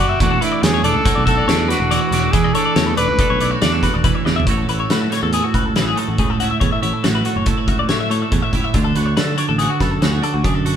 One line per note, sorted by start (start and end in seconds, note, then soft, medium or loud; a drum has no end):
0.00 0.16 F#1 medium
0.00 0.21 G3 medium
0.00 0.18 F#4 medium
0.00 0.19 G4 medium
0.00 0.25 D5 medium
0.09 0.20 E5 medium
0.20 0.37 E1 loud
0.20 1.90 E3 medium
0.20 0.64 A3 medium
0.20 0.43 F#4 medium
0.20 0.31 D5 medium
0.20 kick medium
0.20 closed hi-hat medium
0.24 0.43 D4 soft
0.30 0.41 A4 medium
0.41 0.85 D4 medium
0.41 0.65 E4 medium
0.41 0.52 B4 medium
0.41 closed hi-hat medium
0.52 0.62 D5 medium
0.62 0.80 E2 medium
0.62 2.76 A3 medium
0.62 0.85 G#4 medium
0.62 0.73 B4 medium
0.62 snare loud
0.62 closed hi-hat medium
0.74 0.84 C#5 medium
0.83 0.92 E1 medium
0.83 1.48 D4 medium
0.83 1.27 A4 medium
0.83 0.95 D5 medium
0.83 closed hi-hat medium
0.94 1.03 C#2 medium
0.94 1.05 A4 medium
1.05 1.27 F#4 medium
1.05 1.15 C#5 medium
1.05 kick loud
1.05 snare soft
1.05 closed hi-hat loud
1.15 1.41 B1 medium
1.15 1.25 D5 medium
1.26 2.38 F#4 medium
1.26 1.71 A4 medium
1.26 1.37 E5 medium
1.26 kick medium
1.26 closed hi-hat medium
1.37 1.47 D5 medium
1.48 1.73 E2 medium
1.48 1.70 D4 medium
1.48 1.58 C#5 medium
1.48 snare loud
1.48 closed hi-hat medium
1.58 1.69 D5 medium
1.68 2.12 D4 medium
1.68 2.34 F#4 medium
1.68 1.80 B4 medium
1.68 snare soft
1.68 closed hi-hat medium
1.80 1.97 E1 medium
1.80 1.91 A4 medium
1.91 2.34 E3 medium
1.91 2.01 D5 medium
1.91 closed hi-hat medium
2.01 2.13 B4 medium
2.11 2.28 E1 medium
2.11 2.32 D4 medium
2.11 2.24 C#5 medium
2.11 snare soft
2.11 closed hi-hat medium
2.24 2.34 A4 medium
2.32 2.50 E1 medium
2.32 4.03 E3 medium
2.32 2.55 G#4 medium
2.32 2.44 B4 medium
2.32 kick loud
2.32 closed hi-hat medium
2.44 2.55 D5 medium
2.54 2.98 D4 medium
2.54 2.97 A4 medium
2.54 2.65 C#5 medium
2.54 closed hi-hat medium
2.65 2.75 D5 medium
2.76 2.93 E2 medium
2.76 4.45 A3 medium
2.76 2.86 C#5 medium
2.76 snare loud
2.76 closed hi-hat medium
2.86 2.97 B4 medium
2.97 3.06 E1 medium
2.97 3.61 D4 medium
2.97 3.57 B4 medium
2.97 3.08 D5 medium
2.97 closed hi-hat medium
3.08 3.17 C#2 medium
3.08 3.19 B4 medium
3.19 4.50 A4 medium
3.19 3.30 D5 medium
3.19 kick loud
3.19 closed hi-hat medium
3.30 3.55 B1 medium
3.30 3.40 C#5 medium
3.41 3.51 E4 medium
3.41 3.51 D5 medium
3.41 closed hi-hat medium
3.51 3.82 F#4 soft
3.51 3.61 C#5 medium
3.62 3.88 E2 medium
3.62 4.25 D4 medium
3.62 3.72 D5 medium
3.62 snare loud
3.62 closed hi-hat medium
3.73 3.83 A4 medium
3.83 4.45 F#4 medium
3.83 3.94 B4 medium
3.83 kick medium
3.83 snare soft
3.83 closed hi-hat medium
3.94 4.11 E1 medium
3.94 4.04 D5 medium
4.04 4.44 E3 medium
4.04 4.15 B4 medium
4.04 kick medium
4.04 closed hi-hat medium
4.15 4.25 C#5 medium
4.25 4.43 E2 medium
4.25 4.45 D4 medium
4.25 4.36 D5 medium
4.25 snare medium
4.36 4.46 E5 medium
4.36 floor tom medium
4.46 4.64 A1 medium
4.46 6.17 A2 medium
4.46 5.10 A3 soft
4.46 4.68 E4 medium
4.46 4.90 F#4 medium
4.46 4.58 C#5 medium
4.46 kick medium
4.46 closed hi-hat medium
4.51 8.01 C#5 medium
4.58 4.68 A4 medium
4.68 4.86 A1 medium
4.68 5.33 E4 medium
4.68 4.79 B4 medium
4.68 closed hi-hat medium
4.80 4.90 C#5 medium
4.90 5.07 A2 medium
4.90 5.54 F#4 medium
4.90 5.01 B4 medium
4.90 snare loud
4.90 closed hi-hat medium
5.01 5.11 A4 medium
5.10 5.96 A3 medium
5.10 5.22 C#5 medium
5.10 snare soft
5.10 closed hi-hat medium
5.23 5.39 E2 medium
5.23 5.33 A4 medium
5.33 5.76 E4 medium
5.33 5.44 G#4 medium
5.33 closed hi-hat medium
5.44 5.54 F#4 medium
5.54 5.71 C#2 medium
5.54 6.86 F#4 medium
5.54 5.66 B4 medium
5.54 kick medium
5.54 closed hi-hat medium
5.66 5.76 A4 medium
5.76 5.93 A1 medium
5.76 6.42 E4 medium
5.76 5.87 B4 medium
5.76 snare loud
5.76 closed hi-hat medium
5.87 5.98 G#4 medium
5.96 7.25 A3 medium
5.96 6.09 A4 medium
5.96 closed hi-hat medium
6.08 6.16 A1 medium
6.08 6.19 F#4 medium
6.18 6.52 C#2 medium
6.18 6.60 A2 medium
6.18 6.30 G#4 medium
6.18 kick medium
6.18 closed hi-hat medium
6.30 6.40 A4 medium
6.40 6.82 E4 medium
6.40 6.50 F#4 medium
6.40 closed hi-hat medium
6.51 6.60 E5 medium
6.60 6.69 E2 medium
6.60 8.30 A2 medium
6.60 6.71 C#5 medium
6.60 kick medium
6.60 closed hi-hat medium
6.72 6.82 E5 medium
6.82 6.91 A1 medium
6.82 7.47 E4 medium
6.82 6.93 C#5 medium
6.82 closed hi-hat soft
6.93 7.04 A4 medium
7.04 7.21 A1 medium
7.04 7.68 F#4 medium
7.04 7.14 C#5 medium
7.04 snare loud
7.04 closed hi-hat medium
7.15 7.25 B4 medium
7.25 8.10 A3 medium
7.25 7.36 F#4 medium
7.25 closed hi-hat medium
7.36 7.53 F#1 medium
7.36 7.47 C#5 medium
7.46 7.91 E4 medium
7.46 7.58 A4 medium
7.46 kick loud
7.46 closed hi-hat medium
7.58 7.68 C#5 medium
7.68 7.84 C#2 medium
7.68 8.97 F#4 medium
7.68 7.78 E5 medium
7.68 kick medium
7.68 closed hi-hat medium
7.79 7.88 D5 medium
7.89 8.23 A2 medium
7.89 8.54 E4 medium
7.89 8.00 C#5 medium
7.89 snare medium
7.89 closed hi-hat medium
8.00 8.10 E5 medium
8.10 9.38 A3 medium
8.10 8.22 C#5 medium
8.10 closed hi-hat medium
8.22 8.33 E5 medium
8.31 8.40 E2 medium
8.31 8.74 A2 medium
8.31 8.42 C#5 medium
8.31 kick medium
8.31 closed hi-hat medium
8.42 8.53 E5 medium
8.53 8.61 C#2 medium
8.53 8.78 E4 medium
8.53 8.64 C#5 medium
8.53 kick medium
8.53 closed hi-hat medium
8.64 8.75 E5 medium
8.74 8.91 D2 medium
8.74 10.43 D3 medium
8.74 8.84 C#5 medium
8.74 kick medium
8.74 closed hi-hat medium
8.84 8.95 A4 medium
8.95 9.13 D2 medium
8.95 9.60 F#4 medium
8.95 9.06 B4 medium
8.95 closed hi-hat medium
9.06 9.16 C#5 medium
9.17 9.34 D3 medium
9.17 9.82 A4 medium
9.17 9.27 B4 medium
9.17 snare loud
9.17 closed hi-hat medium
9.27 9.38 A4 medium
9.38 10.21 D4 medium
9.38 9.48 C#5 medium
9.38 closed hi-hat medium
9.49 9.66 A1 medium
9.49 9.58 A4 medium
9.58 10.03 F#4 medium
9.58 9.70 G#4 medium
9.58 closed hi-hat medium
9.70 9.81 F#4 medium
9.80 9.97 F#2 medium
9.80 10.76 A4 medium
9.80 9.92 B4 medium
9.80 kick medium
9.80 snare soft
9.80 closed hi-hat medium
9.92 10.02 A4 medium
10.02 10.19 D2 medium
10.02 10.65 F#4 medium
10.02 10.13 B4 medium
10.02 snare medium
10.02 closed hi-hat medium
10.13 10.23 G#4 medium
10.22 10.76 D4 medium
10.22 10.34 A4 medium
10.22 closed hi-hat medium
10.34 10.42 D2 medium
10.34 10.45 F#4 medium
10.44 10.76 F#2 medium
10.44 10.76 D3 medium
10.44 10.55 G#4 medium
10.44 kick medium
10.44 closed hi-hat medium
10.55 10.66 A4 medium
10.66 10.76 F#4 medium
10.66 closed hi-hat soft